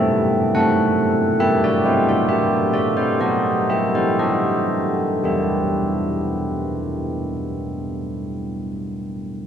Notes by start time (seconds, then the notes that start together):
Already playing: A3 C4 F#4 A4 E5
0.55 A3 C4 F#4 A4 F#5
1.39 B3 E4 G4 E5
1.64 F#4 D5
1.85 E4 C5
2.09 F#4 D5
2.29 G4 E5
2.74 F#4 D5
2.97 E4 C5
3.20 B3 F#4 A4 D#5
3.70 G4 E5
3.95 E4 C5
4.19 B3 F#4 A4 D#5
5.23 E3 B3 G4 B4 E5